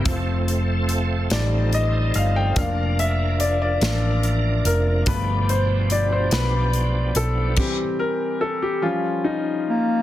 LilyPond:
<<
  \new Staff \with { instrumentName = "Grand piano" } { \time 6/8 \key f \major \tempo 4. = 48 r4. d''8 ees''8 f''16 g''16 | f''8 e''8 d''16 d''4~ d''16 bes'8 | b'8 c''8 d''16 c''16 b'4 a'8 | g'8 bes'8 a'16 g'16 f'8 ees'8 r8 | }
  \new Staff \with { instrumentName = "Grand piano" } { \time 6/8 \key f \major <f a c'>4. <g a ees'>8 r4 | <f bes d'>4. <f bes d'>8 r4 | <f a b>8 r2 r8 | <e g c'>4. <f g des'>4. | }
  \new Staff \with { instrumentName = "Tonewheel organ" } { \time 6/8 \key f \major <f a c' a'>4. <f c' ees' a'>4. | <f bes c' d' bes'>2. | <b, f d' g'>2. | r2. | }
  \new Staff \with { instrumentName = "Bass clarinet" } { \time 6/8 \key f \major r2. | r2. | r2. | r2 r8 bes8 | }
  \new Staff \with { instrumentName = "Fingered electric bass" } { \clef bass \time 6/8 \key f \major f,,4. a,,4 g,,8 | f,,4. a,,4 f,,8 | g,,4. b,,4 b,,8 | r2. | }
  \new DrumStaff \with { instrumentName = "Drums" } \drummode { \time 6/8 <hh bd>8 hh8 hh8 <hh sn>8 hh8 hh8 | <hh bd>8 hh8 hh8 <hh sn>8 hh8 hh8 | <hh bd>8 hh8 hh8 <hh sn>8 hh8 hh8 | <cymc bd>4. r4. | }
>>